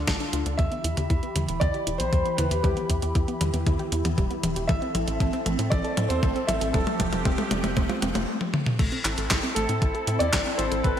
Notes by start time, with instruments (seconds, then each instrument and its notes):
Already playing: analog synth pad D3 D4 F4 A4
0.07 analog synth bass A1, synth arpeggio sound A3, kick, snare, closed hi-hat
0.20 synth arpeggio sound D4, closed hi-hat
0.33 analog synth bass D2, synth arpeggio sound F4, closed hi-hat
0.46 analog synth bass D2, synth arpeggio sound A4, closed hi-hat
0.57 analog synth bass E2, analog synth pad E3 E4 G4 B5, synth arpeggio sound G3, grand piano E5, kick, closed hi-hat, mid tom
0.72 synth arpeggio sound B3, closed hi-hat
0.84 analog synth bass E2, synth arpeggio sound E4, closed hi-hat
0.97 analog synth bass E2, synth arpeggio sound G4, closed hi-hat, mid tom
1.10 analog synth bass E2, synth arpeggio sound E4, kick, closed hi-hat
1.23 synth arpeggio sound B3, closed hi-hat
1.36 analog synth bass E2, synth arpeggio sound G3, closed hi-hat, mid tom
1.49 analog synth bass E1, synth arpeggio sound B3, closed hi-hat
1.60 analog synth bass E2, synth arpeggio sound E4, grand piano D5, kick, closed hi-hat, mid tom
1.74 synth arpeggio sound G4, closed hi-hat
1.87 analog synth bass E1, synth arpeggio sound E4, closed hi-hat
1.98 analog synth bass B1, synth arpeggio sound B3, grand piano C5, closed hi-hat
2.13 analog synth bass E2, synth arpeggio sound G3, kick, closed hi-hat
2.25 synth arpeggio sound B3, closed hi-hat
2.37 analog synth bass E2, synth arpeggio sound E4, grand piano B4, closed hi-hat, mid tom
2.51 analog synth bass E2, synth arpeggio sound G4, closed hi-hat
2.62 analog synth bass E2, synth arpeggio sound G3, grand piano G4, kick, closed hi-hat, mid tom
2.77 synth arpeggio sound B3, closed hi-hat
2.90 analog synth bass E2, synth arpeggio sound E4, kick, closed hi-hat
3.02 analog synth bass E2, synth arpeggio sound G4, closed hi-hat
3.15 analog synth bass E2, synth arpeggio sound E4, kick, closed hi-hat
3.28 synth arpeggio sound B3, closed hi-hat
3.41 analog synth bass E2, synth arpeggio sound G3, closed hi-hat, mid tom
3.54 analog synth bass E2, synth arpeggio sound B3, closed hi-hat
3.67 analog synth bass E2, synth arpeggio sound E4, kick, closed hi-hat, mid tom
3.79 synth arpeggio sound G4, closed hi-hat
3.92 analog synth bass E2, synth arpeggio sound E4, closed hi-hat
4.05 analog synth bass E2, synth arpeggio sound B3, closed hi-hat, mid tom
4.18 analog synth bass E1, synth arpeggio sound G3, kick, closed hi-hat
4.31 synth arpeggio sound B3, closed hi-hat
4.43 analog synth bass E1, synth arpeggio sound E4, closed hi-hat, mid tom
4.56 analog synth bass E1, synth arpeggio sound G4, closed hi-hat
4.67 analog synth bass A1, synth arpeggio sound A3, analog synth pad C4 A4, grand piano E5, kick, closed hi-hat, mid tom
4.82 synth arpeggio sound C4, closed hi-hat
4.95 analog synth bass A1, synth arpeggio sound E4, closed hi-hat, mid tom
5.07 analog synth bass A1, synth arpeggio sound A4, closed hi-hat
5.20 analog synth bass A1, synth arpeggio sound E4, kick, closed hi-hat, mid tom
5.33 synth arpeggio sound C4, closed hi-hat
5.46 analog synth bass A1, synth arpeggio sound A3, closed hi-hat, mid tom
5.59 analog synth bass A2, synth arpeggio sound C4, closed hi-hat
5.70 analog synth bass A1, synth arpeggio sound E4, grand piano D5, kick, closed hi-hat, mid tom
5.84 synth arpeggio sound A4, closed hi-hat
5.97 analog synth bass A2, synth arpeggio sound E4, closed hi-hat, mid tom
6.09 analog synth bass E2, synth arpeggio sound C4, grand piano C5, closed hi-hat
6.23 analog synth bass A1, synth arpeggio sound A3, kick, closed hi-hat, mid tom
6.36 synth arpeggio sound C4, closed hi-hat
6.47 analog synth bass A1, synth arpeggio sound E4, grand piano E5, closed hi-hat, mid tom
6.61 analog synth bass A1, synth arpeggio sound A4, closed hi-hat
6.73 analog synth bass F1, analog synth pad F3 G4, synth arpeggio sound G3, grand piano A4, kick, closed hi-hat, mid tom
6.87 synth arpeggio sound A3, closed hi-hat, mid tom
7.00 analog synth bass F1, synth arpeggio sound C4, kick, closed hi-hat, mid tom
7.13 analog synth bass F1, synth arpeggio sound F4, closed hi-hat, mid tom
7.25 analog synth bass F1, synth arpeggio sound C4, kick, closed hi-hat, mid tom
7.38 synth arpeggio sound A3, closed hi-hat, mid tom
7.51 analog synth bass F1, synth arpeggio sound G3, closed hi-hat, mid tom
7.64 analog synth bass F1, synth arpeggio sound A3, closed hi-hat, mid tom
7.77 analog synth bass F1, synth arpeggio sound C4, kick, closed hi-hat, mid tom
7.89 synth arpeggio sound F4, closed hi-hat, mid tom
8.02 analog synth bass F1, synth arpeggio sound C4, closed hi-hat, mid tom
8.15 analog synth bass F1, synth arpeggio sound A3, closed hi-hat, mid tom
8.41 high tom
8.54 mid tom
8.66 mid tom
8.79 analog synth bass A1, synth arpeggio sound A3, analog synth pad C4 E4 A4, kick, closed hi-hat, crash
8.92 synth arpeggio sound C4, closed hi-hat
9.05 analog synth bass A1, synth arpeggio sound E4, clap, closed hi-hat
9.18 analog synth bass A1, synth arpeggio sound A4, closed hi-hat
9.31 analog synth bass A1, synth arpeggio sound E4, kick, snare, clap, closed hi-hat
9.43 synth arpeggio sound C4, closed hi-hat
9.55 analog synth bass A1, synth arpeggio sound A3, grand piano A4, closed hi-hat
9.69 analog synth bass A2, synth arpeggio sound C4, closed hi-hat
9.82 analog synth bass A1, synth arpeggio sound E4, kick, closed hi-hat
9.95 synth arpeggio sound A4, closed hi-hat
10.07 analog synth bass A2, synth arpeggio sound E4, closed hi-hat
10.19 analog synth bass E2, synth arpeggio sound C4, grand piano D5, closed hi-hat
10.33 analog synth bass A1, synth arpeggio sound A3, kick, snare, clap, closed hi-hat
10.46 synth arpeggio sound C4, closed hi-hat
10.58 analog synth bass A1, synth arpeggio sound E4, grand piano C5, closed hi-hat
10.72 analog synth bass A1, synth arpeggio sound A4, closed hi-hat
10.83 analog synth bass A1, synth arpeggio sound A3, grand piano B4, kick, closed hi-hat